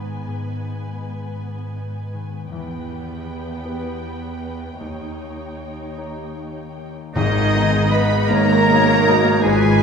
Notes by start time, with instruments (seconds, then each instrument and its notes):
Already playing: harp G#2 D#3 B3 D#4 B4, grand piano G#2 B3 D#4 B4, cello section G#2, viola section B3, violin section B4 G#5
0.27 harp G#2
0.64 harp D#4
1.01 harp B4
1.38 harp B3
1.76 harp D#4
2.14 harp D#3
2.51 cello section E2, grand piano E2, harp E3, viola section B3, violin section B4 G5
2.90 harp G4
3.27 harp B4
3.64 grand piano B3 G4 B4, harp B3
4.03 harp G4
4.41 harp E4
4.79 grand piano D#2, cello section D#2, harp D#3, viola section D#4, violin section C#5
5.19 harp G4
5.59 harp C#5
5.97 grand piano D#4 G4 C#5, harp D#4
6.38 harp G4
6.77 harp A#3
7.14 double bass section G#1, grand piano G#1 G#2, timpani G#2, harp G#2, cello section D#3, oboe D#4, violin section D#4 D#5, flute section G#4
7.35 harp D#3
7.54 harp G#3, viola section G#3 D#4, grand piano B3 D#4 D#5
7.73 harp D#4
7.90 cello section B3, grand piano B3 D#4 D#5, oboe B4, violin section B4 B5, harp D#5, flute section D#5
8.11 harp G#4
8.29 grand piano G#1 G#2, double bass section G#1, cello section A#3, oboe A#4, french horn section A#4, violin section A#4 A#5, flute section C#5, harp D#5
8.49 harp D#6
8.67 grand piano B2 D#4 D#5, viola section G#3 D#4, french horn section G#4, harp D#5
9.06 grand piano B2 D#4 D#5, french horn section F#4, harp D#5
9.25 harp D#4
9.42 double bass section G#1, grand piano G#1 G#2, harp G#2, cello section G#3, french horn section F4, oboe G#4, violin section G#4 G#5, flute section B4
9.64 harp D#3